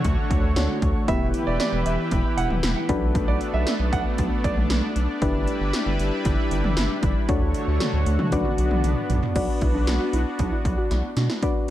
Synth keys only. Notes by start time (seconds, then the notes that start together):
Already playing: D4 F#4 A4 C#5
0.56 D4 F#4 A4 C#5
1.08 B3 E4 G4 B4
2.89 D4 F#4 A4 B4
5.22 D4 E4 G4 B4
7.29 D4 F#4 A4 C#5
8.32 D4 F#4 B4 D5
9.36 D4 F#4 B4 D5
11.43 D4 F#4 B4 D5